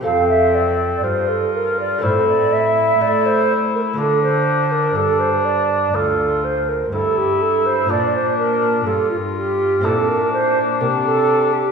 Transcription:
X:1
M:4/4
L:1/16
Q:1/4=61
K:F
V:1 name="Flute"
f e d2 c A B d c d e2 d c2 B | A c2 B A c d2 A2 c B A G A c | d c B2 A F G2 A B c2 B A2 G |]
V:2 name="Oboe"
C4 F4 E8 | D4 D4 F2 z2 E4 | D4 F4 D8 |]
V:3 name="Lute"
[A,CA]8 [A,CA]8 | [A,DF]16 | [DF]8 [CE]8 |]
V:4 name="Lute" clef=bass
F,,4 G,,4 A,,4 A,4 | D,4 G,,4 D,,4 G,,4 | B,,4 G,,4 B,,4 C,4 |]
V:5 name="Cello" clef=bass
F,,4 G,,4 A,,4 A,4 | D,4 G,,4 D,,4 G,,4 | B,,4 G,,4 B,,4 C,4 |]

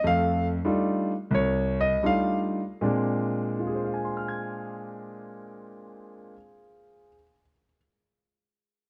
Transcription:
X:1
M:4/4
L:1/8
Q:"Swing" 1/4=79
K:Bbmix
V:1 name="Grand piano"
f z3 _d e f z | z2 [FAcfac'f'a']6- | [FAcfac'f'a']8 |]
V:2 name="Grand piano"
[F,,=A,]2 [G,A,DEF] z C,,2 [G,A,DEF] z | [B,,A,CD]8- | [B,,A,CD]8 |]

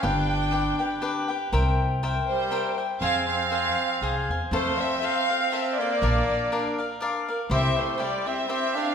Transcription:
X:1
M:3/4
L:1/8
Q:"Swing" 1/4=121
K:Fm
V:1 name="Violin section"
g4 z2 | z3 c2 z | f f4 z | [K:F] c e f2 e d- |
d3 z3 | e c d e e f |]
V:2 name="Cavaquinho"
[=DG=Bg]2 [DGBg] [GBg] [DGBg] [GBg] | [Bc=eg]2 [Bceg]2 [Bceg] [ceg] | [Acfa]2 [Acfa]2 [Acfa] [cfa] | [K:F] [FAcf]2 [FAcf] [Acf] [FAcf] [Acf] |
[DBdf]2 [DBdf] [Bdf] [DBdf] [Bdf] | [EGce]2 [EGce] [Gce] [EGce] [Gce] |]
V:3 name="Trumpet"
=D4 z2 | z3 G,2 z | C C4 z | [K:F] A, C C2 C B,- |
B,3 z3 | C A, G, C C D |]
V:4 name="Upright bass" clef=bass
G,,,4 z2 | C,,4 z2 | F,,4 C,, =E,, | [K:F] F,, z4 z |
B,,, z4 z | C,, z4 z |]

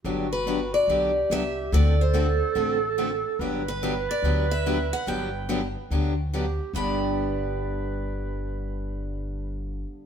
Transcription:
X:1
M:4/4
L:1/8
Q:"Swing" 1/4=143
K:G
V:1 name="Steel-string acoustic guitar"
z B2 d3 e2 | d c3 z4 | z B2 d2 e2 f | g6- g z |
b8- | b8 |]
V:2 name="Clarinet"
F4 G4 | A8 | B8- | B4- B z G2 |
B8- | B8 |]
V:3 name="Steel-string acoustic guitar"
[D,F,B,DG] z [D,F,B,DG] z [D,F,B,DG] z [D,F,B,DG] z | [D,A,CFA] z [D,A,CFA] z [D,A,CFA] z [D,A,CFA] z | [D,F,B,DG] z [D,F,B,DG] z [D,F,B,DG] z [D,F,B,DG] z | [D,F,B,DG] z [D,F,B,DG] z [D,F,B,DG] z [D,F,B,DG] z |
[G,,D,B,DG]8- | [G,,D,B,DG]8 |]
V:4 name="Steel-string acoustic guitar"
[D,F,B,DG] z [D,F,B,DG] z [D,F,B,DG] z [D,F,B,DG] z | [D,A,CFA] z [D,A,CFA] z [D,A,CFA] z [D,A,CFA] z | [D,F,B,DG] z [D,F,B,DG] z [D,F,B,DG] z [D,F,B,DG] z | [D,F,B,DG] z [D,F,B,DG] z [D,F,B,DG] z [D,F,B,DG] z |
[G,,D,B,DG]8- | [G,,D,B,DG]8 |]
V:5 name="Upright bass" clef=bass
G,,,4 B,,,2 C,,2 | D,,4 A,,,4 | G,,,4 D,,4 | G,,,4 D,,4 |
G,,,8- | G,,,8 |]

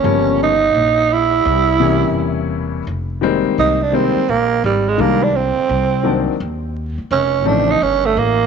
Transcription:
X:1
M:4/4
L:1/16
Q:"Swing 16ths" 1/4=85
K:Cm
V:1 name="Tenor saxophone"
_D2 E4 =E8 z2 | z4 E D C2 B,2 G, A, B, D C2- | C4 z4 _D2 =D E _D =A, B,2 |]
V:2 name="Grand piano" clef=bass
[_D,F,G,B,_D]2 z8 [C,=E,G,B,D]6 | z2 [E,G,A,B,C]2 z2 [E,G,A,B,C]2 z4 [E,G,A,B,D]2 z2 | z2 [E,_G,B,CD]2 z6 [_D,F,=A,CE]2 z4 |]
V:3 name="Upright bass" clef=bass
G,,,4 B,,,4 C,,4 =E,,,4 | F,,,3 z C,,3 z B,,,2 A,,,2 C,,3 z | C,,3 z E,,3 z F,,,2 =A,,,2 G,,,2 A,,,2 |]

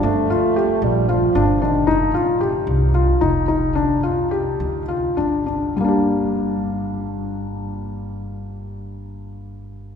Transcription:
X:1
M:7/8
L:1/8
Q:1/4=105
K:Gm
V:1 name="Felt piano"
D F G2 F D D | E F G2 F E E | D F G2 F D D | [G,B,DG]6- [G,B,DG]- |
[G,B,DG]6- [G,B,DG] |]
V:2 name="French horn" clef=bass
A,3 G, F,2 E, | z6 z | z6 z | z6 z |
z6 z |]
V:3 name="Upright bass" clef=bass
G,,, z2 B,,,2 G,,,2 | F,,, z2 C,,2 F,,,2 | G,,, z2 D,,2 G,,,2 | G,,,6- G,,,- |
G,,,6- G,,, |]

